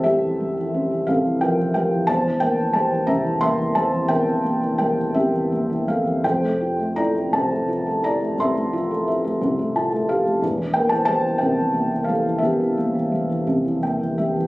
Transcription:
X:1
M:6/8
L:1/16
Q:3/8=58
K:F
V:1 name="Felt piano"
[Ge]6 [Af]2 [Bg]2 [Bg]2 | [ca]2 [Bg]2 [ca]2 [eb]2 [ec']2 [ca]2 | [Bg]4 [Bg]2 [Ge]4 [Af]2 | [cg]4 [db]2 [ca]4 [db]2 |
[ec']6 z2 a2 f2 | z2 [Bg] [ca] [ca]2 [Bg]4 [Af]2 | [Ge]8 g2 e2 |]
V:2 name="Felt piano" clef=bass
[C,,C,E,A,] E, G, E, C E, [C,,C,] E, F, E, G, E, | [E,,,E,,] E, B, E, G, E, [C,,C,] E, B, E, G, E, | [E,,,E,,] E, B, E, G, E, [C,,C,] E, B, E, G, E, | [F,,,F,,] A, F A, E A, [C,,C,] A, F A, E A, |
C,, A, F A, e A, [C,,C,] A, F A, G A, | [E,,,E,,] E, B, E, G, E, [C,,C,] E, B, E, G, E, | [E,,,E,,] E, B, E, G, E, [C,,C,] E, B, E, G, E, |]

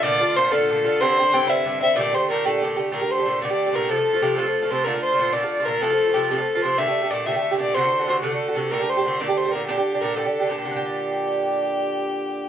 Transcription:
X:1
M:6/8
L:1/16
Q:3/8=125
K:Gdor
V:1 name="Fiddle"
d4 c2 A6 | c4 g2 e4 e2 | d2 c2 B2 A4 G2 | B2 c4 d4 B2 |
A4 G2 A4 c2 | B2 c4 d4 B2 | A4 G2 A4 c2 | e4 d2 e4 d2 |
c4 c2 A6 | B2 c4 d2 c2 B2 | G4 B2 A4 G2 | G12- |
G12 |]
V:2 name="Bouzouki"
[B,,D,A,F]2 [D,A,F]2 [B,,D,A,F]2 [B,,D,A,F]2 [B,,D,A,F]2 [D,A,F]2 | [G,,D,CE]2 [D,CE]2 [G,,D,CE]2 [G,,D,CE]2 [G,,D,CE]2 [D,CE]2 | [B,,D,A,G]2 [D,A,G]2 [B,,D,A,G]2 [B,,D,A,G]2 [B,,D,A,G]2 [D,A,G]2 | [B,,D,A,G] [D,A,G]2 [D,A,G] [B,,D,A,G]2 [B,,D,A,G] [D,A,G]2 [D,A,G] [B,,D,A,G]2 |
[C,F,A,F] [F,A,F]2 [F,A,F] [C,F,A,F]2 [C,F,A,F] [F,A,F]2 [F,A,F] [C,F,A,F]2 | [B,,D,A,F] [D,A,F]2 [D,A,F] [B,,D,A,F]2 [B,,D,A,F] [D,A,F]2 [D,A,F] [B,,D,A,F]2 | [C,F,A,F] [F,A,F]2 [F,A,F] [C,F,A,F]2 [C,F,A,F] [F,A,F]2 [F,A,F] [C,F,A,F]2 | [B,,D,A,G] [D,A,G]2 [D,A,G] [B,,D,A,G]2 [B,,D,A,G] [D,A,G]2 [D,A,G] [B,,D,A,G]2 |
[C,D,A,^F] [D,A,F]2 [D,A,F] [C,D,A,F]2 [C,D,A,F] [D,A,F]2 [D,A,F] [C,D,A,F]2 | [B,,D,A,G] [D,A,G]2 [D,A,G] [B,,D,A,G]2 [B,,D,A,G] [D,A,G]2 [D,A,G] [B,,D,A,G]2 | [B,,D,DG] [D,DG]2 [D,DG] [B,,D,DG]2 [B,,D,DG] [D,DG]2 [D,DG] [B,,D,DG]2 | [B,,D,DG]12- |
[B,,D,DG]12 |]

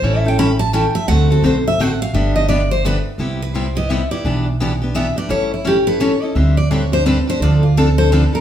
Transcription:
X:1
M:3/4
L:1/16
Q:"Swing" 1/4=171
K:G
V:1 name="Steel-string acoustic guitar"
(3^c2 e2 g2 b2 a2 g2 e2 | f2 A2 c2 e2 f2 =f2 | e2 _e2 d2 c2 B2 z2 | z2 B2 c2 _e2 =e2 d2- |
d2 z6 e2 d2 | ^c2 E2 G2 B2 c2 _e2 | e2 d2 ^c2 =c2 B2 c2 | d2 =F2 A2 c2 B2 _B2 |]
V:2 name="Steel-string acoustic guitar"
[E,G,^CEA]2 [CEA]2 [E,G,CEA] z3 [E,G,CEA] z3 | [D,A,CFA]2 [CFA]2 [D,A,CFA] z3 [D,A,CFA] z3 | [D,G,B,DG]2 [B,DG]2 [D,G,B,DG] z3 [D,G,B,DG] z3 | [C,G,B,EG]2 z2 [C,G,B,EG] z [B,EG]2 [C,G,B,EG] z [B,EG]2 |
[B,,E,B,DG]2 z2 [B,,E,B,DG] z [B,DG]2 [B,,E,B,DG] z [B,DG]2 | [E,G,^CEA]2 z2 [E,G,CEA] z [CEA]2 [E,G,CEA] z [CEA]2 | [D,G,CDG]2 z2 [D,G,CDG] z [CDG]2 [D,G,CDG] z [CDG]2 | [D,=F,CDA]2 z2 [D,F,CDA] z [CDA]2 [D,F,CDA] z [CDA]2 |]
V:3 name="Upright bass" clef=bass
A,,,12 | D,,4 B,,,4 A,,,4 | G,,,12 | C,,12 |
B,,,12 | A,,,12 | D,,12 | D,,12 |]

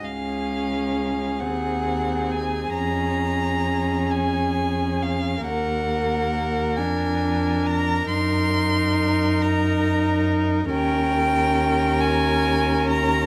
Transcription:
X:1
M:6/8
L:1/8
Q:3/8=45
K:Db
V:1 name="Violin"
f3 g2 a | b3 a2 f | g3 a2 b | c'3 b2 z |
=g3 a2 b |]
V:2 name="Violin"
A6- | A6 | B6- | B6 |
B6 |]
V:3 name="Viola"
D3 C3 | D6 | B,3 =D3 | E6 |
D6 |]
V:4 name="Cello" clef=bass
D,,3 E,,3 | F,,6 | E,,3 F,,3 | G,,6 |
E,,6 |]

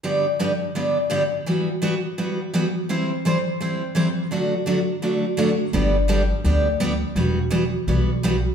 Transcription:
X:1
M:4/4
L:1/16
Q:"Swing" 1/4=168
K:G
V:1 name="Steel-string acoustic guitar"
[G,,D,G,B,DG]2 z2 [G,,D,G,B,DG] z3 [G,,D,G,B,DG]2 z2 [G,,D,G,B,DG] z3 | [E,G,B,F]2 z2 [E,G,B,F] z3 [E,G,B,F]2 z2 [E,G,B,F] z3 | [E,G,CEc]2 z2 [E,G,CEc] z3 [E,G,CEc]2 z2 [E,G,CEc] z3 | [D,F,A,DF]2 z2 [D,F,A,DF] z3 [D,F,A,DF]2 z2 [D,F,A,DF] z3 |
[D,G,B,DG]2 z2 [D,G,B,DG] z3 [D,G,B,DG]2 z2 [D,G,B,DG] z3 | [E,G,B,F]2 z2 [E,G,B,F] z3 [E,G,B,F]2 z2 [E,G,B,F] z3 |]
V:2 name="Upright bass" clef=bass
z16 | z16 | z16 | z16 |
G,,,8 D,,8 | E,,,8 B,,,8 |]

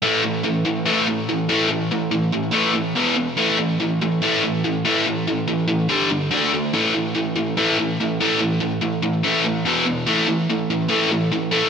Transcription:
X:1
M:4/4
L:1/8
Q:1/4=144
K:Ephr
V:1 name="Overdriven electric guitar" clef=bass
[A,,E,A,] [A,,E,] [A,,E,] [A,,E,] [A,,E,A,] [A,,E,] [A,,E,] [A,,E,A,] | [A,,E,] [A,,E,] [A,,E,] [A,,E,] [A,,E,A,] [A,,E,] [E,,B,,E,] [E,,B,,] | [A,,E,A,] [A,,E,] [A,,E,] [A,,E,] [A,,E,A,] [A,,E,] [A,,E,] [A,,E,A,] | [A,,E,] [A,,E,] [A,,E,] [A,,E,] [G,,D,G,] [G,,D,] [D,A,D] [D,A,] |
[A,,E,A,] [A,,E,] [A,,E,] [A,,E,] [A,,E,A,] [A,,E,] [A,,E,] [A,,E,A,] | [A,,E,] [A,,E,] [A,,E,] [A,,E,] [A,,E,A,] [A,,E,] [E,,B,,E,] [E,,B,,] | [A,,E,A,] [A,,E,] [A,,E,] [A,,E,] [A,,E,A,] [A,,E,] [A,,E,] [A,,E,A,] |]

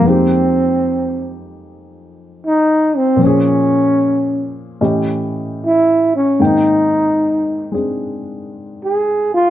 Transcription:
X:1
M:4/4
L:1/8
Q:"Swing" 1/4=76
K:Fdor
V:1 name="Trombone"
C3 z3 E C | _D3 z3 =E ^C | E3 z3 A F |]
V:2 name="Grand piano"
[F,,F,A,B,EG]8 | [B,,F,_DAc]4 [=A,,=E,^CG^d]4 | [A,,E,B,Cg]3 [A,CDA]4- [A,CDA] |]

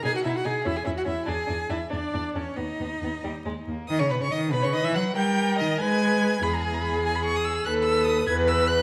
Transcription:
X:1
M:6/8
L:1/16
Q:3/8=96
K:B
V:1 name="Violin"
g f e f g2 e g e f e2 | g4 e2 =d4 c2 | d8- d2 z2 | d' c' b c' d'2 b c' d' e' f'2 |
=g'4 d'2 ^g'6 | b a g a b2 g b c' d' e'2 | f'2 e'2 d'2 g'2 e'2 f'2 |]
V:2 name="Viola"
G F E F G2 E G E F E2 | G4 E2 =D4 C2 | D8- D2 z2 | z6 B6 |
A6 B6 | G12 | =A6 B6 |]
V:3 name="Violin"
D2 D2 D2 C2 C2 C2 | =D2 D2 D2 D2 D2 D2 | B,2 B,2 B,2 =G,2 ^G,2 A,2 | d c B c d2 B c d e f2 |
=g4 d2 ^g6 | G6 G6 | B6 B6 |]
V:4 name="Cello" clef=bass
B,,2 B,,2 B,,2 E,,2 E,,2 E,,2 | E,,2 E,,2 E,,2 E,,2 E,,2 E,,2 | D,,2 D,,2 D,,2 D,,2 D,,2 D,,2 | D, C, B,, C, D,2 B,, C, D, E, F,2 |
=G,4 D,2 ^G,6 | E,,12 | D,,6 E,,6 |]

